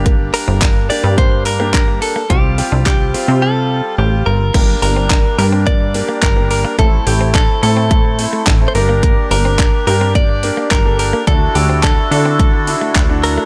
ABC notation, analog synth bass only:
X:1
M:4/4
L:1/16
Q:1/4=107
K:Gdor
V:1 name="Analog synth bass" clef=bass
G,,,3 G,,,4 G,,8- G,, | C,,3 C,,4 C,4- C, A,,,2 G,,,2 | G,,,2 G,,,4 G,,6 G,,,4 | A,,,2 A,,,4 A,,6 A,,,2 G,,,2- |
G,,,2 G,,,4 G,,6 G,,,4 | D,,2 D,,4 D,6 D,,4 |]